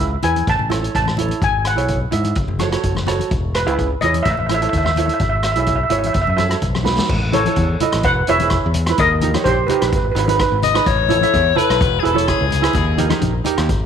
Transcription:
Already playing: C#2 B4 E5
0.00 kick
0.22 E2 E4 G#4 B4 G#5, closed hi-hat, low conga
0.36 closed hi-hat, high conga
0.47 A1 A5, kick, closed hi-hat
0.59 A1, low conga
0.69 E4 A4 C#5, cross-stick, closed hi-hat, high conga
0.81 E4 A4 C#5, closed hi-hat
0.95 A1 A5, kick, closed hi-hat
1.06 cross-stick, high conga
1.17 E4 A4 C#5, closed hi-hat, low conga
1.29 closed hi-hat, high conga
1.42 G#1 G#5, kick, closed hi-hat
1.65 F#5, cross-stick, closed hi-hat
1.76 B1 E4 G#4 C#5, closed hi-hat
1.88 kick, closed hi-hat
2.11 G#2 E4 G#4 E5, closed hi-hat, low conga
2.24 closed hi-hat, high conga
2.35 F#1, kick, closed hi-hat
2.48 F#1, low conga
2.59 F#4 A4 C#5, cross-stick, closed hi-hat, high conga
2.72 F#4 A4 C#5, cross-stick, closed hi-hat
2.83 F#1, kick, closed hi-hat
2.95 cross-stick, high conga
3.07 F#4 A4 C#5, cross-stick, closed hi-hat, low conga
3.19 closed hi-hat, high conga
3.31 E1, kick, closed hi-hat
3.55 B4, cross-stick, closed hi-hat
3.66 C#2 E4 G#4 B4, closed hi-hat
3.79 kick, closed hi-hat
4.01 E2 E4 G#4 C#5 D#5, closed hi-hat, low conga
4.14 closed hi-hat, high conga
4.23 A1 E5, kick, closed hi-hat
4.37 A1 E5, low conga
4.46 E4 E5, cross-stick, closed hi-hat, high conga
4.51 A4 C#5 E5
4.61 E4 A4 C#5 E5, closed hi-hat
4.69 E5
4.73 D#2, kick, closed hi-hat
4.78 E5
4.84 E5, cross-stick, high conga
4.91 E5
4.96 E4 A4 C#5 E5, closed hi-hat, low conga
5.06 E5, closed hi-hat, high conga
5.14 E5
5.19 G#1 E5, kick, closed hi-hat
5.29 E5
5.36 E5
5.43 E5, cross-stick, closed hi-hat
5.52 E4 E5, closed hi-hat
5.57 B1 G#4 C#5 E5
5.66 E5, kick, closed hi-hat
5.76 E5
5.83 E5
5.89 G#1 E4 G#4 C#5 E5, closed hi-hat, low conga
5.99 E5
6.03 E5, closed hi-hat, high conga
6.13 F#1 E5, kick, closed hi-hat
6.22 E5
6.27 F#2 E5, low conga
6.36 F#4 A4 C#5 E5, cross-stick, closed hi-hat, high conga
6.48 F#4 A4 C#5, cross-stick, closed hi-hat
6.62 B1, kick, closed hi-hat
6.75 cross-stick, high conga
6.83 D#4 F#4 B4, snare, low conga
6.98 snare, high conga
7.09 A1, kick, crash
7.32 E4 A4 C#5, closed hi-hat, high conga, low conga
7.46 E4 A4 C#5, closed hi-hat, high conga
7.56 E2, kick, closed hi-hat
7.80 E4 A4 D#5, closed hi-hat, low conga
7.92 A1, cross-stick, closed hi-hat
8.03 E1 B4 F#5, kick, closed hi-hat
8.27 E1 E4 G#4 B4 C#5 E5, closed hi-hat
8.39 E4 G#4 B4, closed hi-hat, high conga
8.50 kick, cross-stick, closed hi-hat
8.66 E2
8.74 closed hi-hat, low conga
8.86 E4 G#4, cross-stick, closed hi-hat
8.91 B4
8.98 D#2 A#4 D#5, kick, closed hi-hat
9.21 D#4 G4 A#4, closed hi-hat, high conga, low conga
9.34 D#4 G4 C#5, cross-stick, closed hi-hat, high conga
9.44 A#1 G4 C5, kick, closed hi-hat
9.67 D#4 G4 B4, closed hi-hat, low conga
9.71 A#4 B4
9.81 A#1 B4, cross-stick, closed hi-hat
9.88 B4
9.92 G#1 B4, kick, closed hi-hat
10.05 B4
10.12 G#1 D#4 B4
10.16 G#4 B4, closed hi-hat
10.27 D#4 G#4 B4, closed hi-hat, high conga
10.35 B4
10.39 B4, kick, cross-stick, closed hi-hat
10.52 G#1
10.63 D#5, closed hi-hat, low conga
10.74 D#4 G#4 B4, cross-stick, closed hi-hat
10.86 A1 C#5, kick, closed hi-hat
11.09 E4 A4 C#5, closed hi-hat, high conga, low conga
11.21 E4 A4 E5, closed hi-hat, high conga
11.34 E2, kick, closed hi-hat
11.55 E4 A4 B4, closed hi-hat, low conga
11.70 B1, cross-stick, closed hi-hat
11.81 E1, kick, closed hi-hat
11.99 E4 G#4
12.04 E1 A4 B4, closed hi-hat
12.14 E4 G#4 C#5, high conga
12.18 closed hi-hat
12.28 G#4, kick, cross-stick, closed hi-hat
12.41 C#2
12.51 closed hi-hat, low conga
12.62 E4 G#4 B4, cross-stick, closed hi-hat
12.73 D#2, kick, closed hi-hat, low conga
12.98 D#4 G4 A#4, closed hi-hat, high conga, low conga
13.09 D#4 G4 A#4, cross-stick, closed hi-hat, high conga
13.21 A#1, kick, closed hi-hat, high conga
13.44 D#4 G4 A#4, closed hi-hat, low conga
13.58 D#2, cross-stick, closed hi-hat
13.69 G#1, kick, closed hi-hat

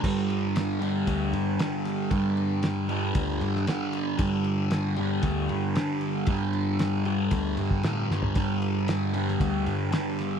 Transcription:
0.04 G2 D3 G3, kick, crash
0.30 ride
0.56 snare, ride
0.80 G2 D3 G3, ride
1.07 D2, kick, ride
1.33 G2, ride
1.59 G2 D3 G3, snare, ride
1.85 snare, ride
2.11 G2 D3 G3, kick, ride
2.37 ride
2.63 snare, ride
2.89 G2 D3 G3, ride
3.15 D2, kick, ride
3.41 G2, ride
3.56 snare
3.66 G2 D3 G3, snare, ride
3.93 ride
4.18 G2 D3 G3, kick, ride
4.44 ride
4.71 snare, ride
4.96 G2 D3 G3, ride
5.23 D2, kick, ride
5.49 G2, ride
5.75 G2 D3 G3, snare, ride
6.01 ride
6.27 G2 D3 G3, kick, ride
6.53 ride
6.79 snare, ride
7.05 G2 D3 G3, ride
7.31 D2, kick, ride
7.57 G2, ride
7.71 kick
7.83 G2 A2 D3 G3, snare, ride
8.11 G2, snare
8.22 floor tom
8.35 G2 D3 G3, kick, ride
8.62 ride
8.88 snare, ride
9.13 G2 D3 G3, ride
9.28 snare
9.40 D2, kick, ride
9.66 G2, ride
9.91 G2 D3 G3, snare, ride
10.19 snare, ride

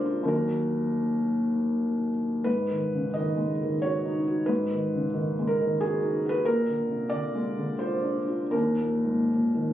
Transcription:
Already playing: A#2 C3 D3 G#3 D4 F4 A#4 C5 D5
0.06 F4
0.23 D#2 D#3 F#3
0.27 F#4 A#4
2.44 G#2 B4
2.70 D#3
2.94 C#3
3.14 D#3 D#5
3.37 G#3
3.62 D#3
3.82 F#4 C#5
4.05 D#4
4.28 F#4
4.46 G#2 B4
4.71 D#3
4.94 C#3
5.14 D#3
5.39 G#3
5.47 A#4
5.61 D#3
5.81 F#4 G#4
6.03 D#4
6.26 F#4 B4
6.45 A#2 A#4
6.67 D3
6.89 C3
7.10 D3 D5
7.35 G#3
7.57 D3
7.79 F4 C5
8.04 D4
8.28 F4
8.51 D#2 A#4
8.78 A#2
9.05 G#2
9.31 A#2
9.54 D#3

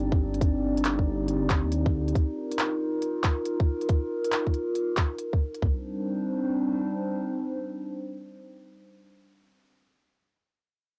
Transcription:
Already playing: G1 C4 D4 D#4 G4 D5
0.12 kick
0.34 closed hi-hat
0.41 kick, closed hi-hat
0.77 closed hi-hat
0.85 clap, closed hi-hat
0.99 kick
1.06 G1
1.28 closed hi-hat
1.50 kick, clap, closed hi-hat
1.64 D#2
1.72 closed hi-hat
1.86 kick
1.93 D2
2.08 closed hi-hat
2.15 F4 A#4, kick, closed hi-hat
2.51 closed hi-hat
2.58 clap, closed hi-hat
3.02 closed hi-hat
3.24 kick, clap, closed hi-hat
3.45 closed hi-hat
3.60 kick
3.81 closed hi-hat
3.89 kick, closed hi-hat
4.24 closed hi-hat
4.32 clap, closed hi-hat
4.47 kick
4.54 closed hi-hat
4.75 closed hi-hat
4.97 kick, clap, closed hi-hat
5.19 closed hi-hat
5.34 kick
5.55 closed hi-hat
5.62 G3 C4 D4 D#4 C5, kick, floor tom

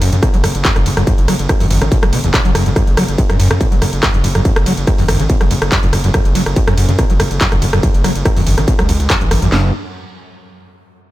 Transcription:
0.01 F#1 F#2, open hi-hat, ride
0.13 F#2 C#3, closed hi-hat
0.23 B2, kick, cross-stick, closed hi-hat, ride
0.34 F#1 F#3, closed hi-hat
0.44 F#1 F#2, cross-stick, open hi-hat, ride
0.55 F#1, closed hi-hat
0.65 F#2, kick, clap, closed hi-hat, ride
0.76 F#1 F#2, cross-stick, closed hi-hat
0.86 F#1 F#2, open hi-hat, ride
0.97 F#1 F#2, cross-stick, closed hi-hat
1.07 F#2, kick, closed hi-hat, ride
1.18 F#1, closed hi-hat
1.28 F#1 F#3, cross-stick, open hi-hat, ride
1.39 F#1, closed hi-hat
1.49 F#2, kick, cross-stick, closed hi-hat, ride
1.60 G#1 F#2, open hi-hat
1.70 F#1 G#1, open hi-hat, ride
1.82 G#1 C#3, cross-stick, closed hi-hat
1.92 B2, kick, closed hi-hat, ride
2.03 F#1 F#3, cross-stick, closed hi-hat
2.13 F#1 B2, open hi-hat, ride
2.24 F#1 E2, closed hi-hat
2.34 B2, kick, cross-stick, clap, closed hi-hat, ride
2.45 F#1 F#3, closed hi-hat
2.55 F#1 F#2, cross-stick, open hi-hat, ride
2.66 F#1 F#2, closed hi-hat
2.76 F#2, kick, cross-stick, closed hi-hat, ride
2.87 F#1, closed hi-hat
2.97 F#1 F#3, cross-stick, open hi-hat, ride
3.08 F#1, closed hi-hat
3.18 F#2, kick, closed hi-hat, ride
3.29 F#2, cross-stick, closed hi-hat
3.39 F#1 F#2, open hi-hat, ride
3.51 F#2 C#3, cross-stick, closed hi-hat
3.61 B2, kick, closed hi-hat, ride
3.72 F#1 F#3, closed hi-hat
3.82 F#1 F#2, cross-stick, open hi-hat, ride
3.93 F#1, closed hi-hat
4.03 F#2, kick, cross-stick, clap, closed hi-hat, ride
4.14 F#1 F#2, closed hi-hat
4.24 F#1 F#2, open hi-hat, ride
4.35 F#1 F#2, cross-stick, closed hi-hat
4.45 F#2, kick, closed hi-hat, ride
4.56 F#1, cross-stick, closed hi-hat
4.66 F#1 F#3, open hi-hat, ride
4.77 F#1, closed hi-hat
4.87 F#2, kick, cross-stick, closed hi-hat, ride
4.98 G#1 F#2, open hi-hat
5.08 F#1 G#1, cross-stick, open hi-hat, ride
5.20 G#1 C#3, closed hi-hat
5.30 B2, kick, closed hi-hat, ride
5.41 F#1 F#3, cross-stick, closed hi-hat
5.51 F#1 F#2, open hi-hat, ride
5.62 F#1, cross-stick, closed hi-hat
5.72 F#2, kick, clap, closed hi-hat, ride
5.83 F#1 F#2, closed hi-hat
5.93 F#1 F#2, cross-stick, open hi-hat, ride
6.04 F#1 F#2, closed hi-hat
6.14 F#2, kick, cross-stick, closed hi-hat, ride
6.25 F#1, closed hi-hat
6.35 F#1 F#3, open hi-hat, ride
6.46 F#1, cross-stick, closed hi-hat
6.56 F#2, kick, closed hi-hat, ride
6.67 F#2, cross-stick, closed hi-hat
6.78 F#1 F#2, open hi-hat, ride
6.89 F#2 C#3, closed hi-hat
6.99 B2, kick, cross-stick, closed hi-hat, ride
7.10 F#1 F#3, closed hi-hat
7.20 F#1 F#2, cross-stick, open hi-hat, ride
7.31 F#1, closed hi-hat
7.41 F#2, kick, clap, closed hi-hat, ride
7.52 F#1 F#2, cross-stick, closed hi-hat
7.62 F#1 F#2, open hi-hat, ride
7.73 F#1 F#2, cross-stick, closed hi-hat
7.83 F#2, kick, closed hi-hat, ride
7.94 F#1, closed hi-hat
8.04 F#1 F#3, cross-stick, open hi-hat, ride
8.15 F#1, closed hi-hat
8.25 F#2, kick, cross-stick, closed hi-hat, ride
8.36 G#1 F#2, open hi-hat
8.47 F#1 G#1, open hi-hat, ride
8.58 G#1 C#3, cross-stick, closed hi-hat
8.68 B2, kick, closed hi-hat, ride
8.79 C#2 F#3, cross-stick, closed hi-hat
8.89 C#2 F#2, open hi-hat, ride
9.00 C#2, closed hi-hat
9.10 F#2, kick, cross-stick, clap, closed hi-hat, ride
9.21 A1 F#2, closed hi-hat
9.31 A1 F#2, cross-stick, open hi-hat, ride
9.42 A1 F#2, closed hi-hat
9.52 F#1 F#2, snare, clap

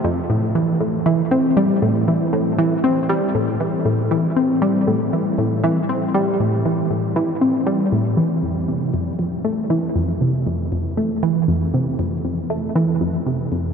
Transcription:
0.04 F2
0.30 A2
0.55 E3
0.81 A2
1.06 E3
1.31 C4
1.57 G3
1.82 A2
2.08 E3
2.33 A2
2.58 E3
2.84 C4
3.09 G3
3.35 A2
3.60 E3
3.85 A2
4.11 E3
4.36 C4
4.62 G3
4.87 A2
5.13 E3
5.38 A2
5.64 E3
5.89 C4
6.14 G3
6.40 A2
6.65 E3
6.91 A2
7.16 E3
7.41 C4
7.67 G3
7.92 A2
8.17 E3
8.43 F2
8.68 C3
8.94 F2
9.19 F2
9.45 A3
9.70 E3
9.95 F2
10.21 C3
10.46 F2
10.72 F2
10.97 A3
11.23 E3
11.48 F2
11.74 C3
11.99 F2
12.25 F2
12.50 A3
12.76 E3
13.01 F2
13.26 C3
13.52 F2

